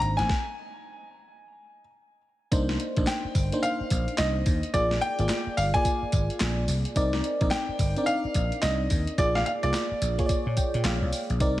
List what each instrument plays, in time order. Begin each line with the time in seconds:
Already playing: fm electric piano A#3 C4 D4 D#4 C5
0.00 slap bass G#1, grand piano A#5, closed hi-hat
0.17 slap bass A1, grand piano G#5, snare, closed hi-hat
0.29 kick, snare
2.51 slap bass C2, fm electric piano A#3 D4 D#4 C5, kick, closed hi-hat, tambourine
2.69 snare
2.80 closed hi-hat
2.96 slap bass A#1, fm electric piano A#3 D4 D#4 C5, kick, closed hi-hat
3.07 grand piano G5, snare, clap, closed hi-hat, tambourine
3.25 muted slap bass stroke
3.35 slap bass G1, kick, open hi-hat, tambourine
3.52 fm electric piano A#3 D4 D#4 C5, closed hi-hat
3.63 grand piano F5, closed hi-hat, tambourine
3.80 muted slap bass stroke
3.90 slap bass A#1, kick, closed hi-hat, tambourine
4.08 closed hi-hat
4.18 slap bass C2, grand piano D#5, snare, clap, closed hi-hat, tambourine
4.46 slap bass D#2, kick, open hi-hat, tambourine
4.63 closed hi-hat
4.74 slap bass A#1, fm electric piano A#3 F4 G#4 D5, grand piano D5, kick, closed hi-hat, tambourine
4.91 snare
5.01 grand piano G5, closed hi-hat
5.19 slap bass G#1, fm electric piano A#3 F4 G#4 D5, closed hi-hat
5.29 snare, clap, closed hi-hat, tambourine
5.47 muted slap bass stroke
5.57 slap bass G1, grand piano F5, open hi-hat, tambourine
5.74 fm electric piano A#3 F4 G#4 D5, grand piano G#5, kick, closed hi-hat
5.85 kick, closed hi-hat, tambourine
6.03 muted slap bass stroke
6.12 slap bass G#1, kick, closed hi-hat, tambourine
6.30 closed hi-hat
6.40 slap bass A#1, snare, clap, closed hi-hat, tambourine
6.68 slap bass C2, open hi-hat, tambourine
6.85 closed hi-hat
6.96 slap bass C2, fm electric piano C4 D#4 A#4 D5, kick, closed hi-hat, tambourine
7.13 snare
7.24 closed hi-hat
7.41 slap bass A#1, fm electric piano C4 D#4 A#4 D5, kick, closed hi-hat
7.51 grand piano G5, snare, clap, closed hi-hat, tambourine
7.69 muted slap bass stroke
7.79 slap bass G1, kick, open hi-hat, tambourine
7.96 fm electric piano C4 D4 A#4 D5, closed hi-hat
8.04 fm electric piano D#4, grand piano F5, closed hi-hat, tambourine
8.24 muted slap bass stroke
8.34 slap bass A#1, kick, closed hi-hat, tambourine
8.52 closed hi-hat
8.62 slap bass C2, grand piano D#5, snare, clap, closed hi-hat, tambourine
8.90 slap bass D#2, kick, open hi-hat, tambourine
9.07 closed hi-hat
9.18 slap bass A#1, fm electric piano A#3 F4 G#4 D5, grand piano D5, kick, closed hi-hat, tambourine
9.35 grand piano F5, snare
9.46 grand piano F5, closed hi-hat
9.63 slap bass C2, fm electric piano A#3 F4 G#4 D5, grand piano D5, closed hi-hat
9.74 snare, clap, closed hi-hat, tambourine
9.91 muted slap bass stroke
10.02 slap bass A#1, closed hi-hat, tambourine
10.18 fm electric piano A#3 F4 G#4 C#5, kick, closed hi-hat
10.26 fm electric piano D5, kick, closed hi-hat, tambourine
10.46 slap bass A#2
10.57 fm electric piano G5, kick, closed hi-hat, tambourine
10.74 slap bass A#2, closed hi-hat
10.84 slap bass A#1, fm electric piano F5, snare, clap, closed hi-hat, tambourine
11.02 slap bass C2
11.13 open hi-hat, tambourine
11.30 slap bass A#1, closed hi-hat
11.40 slap bass C2, fm electric piano C4 D#4 A#4 D5, kick, closed hi-hat, tambourine